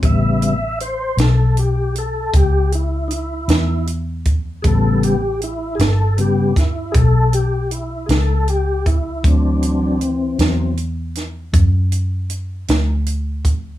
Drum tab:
HH |xxxxxxxxxxxx|xxxxxxxxxxxx|xxxxxxxxxxxx|
SD |---o-----o--|---o-o---o--|---o-o---o--|
BD |o-----o----o|o----oo----o|o-----o----o|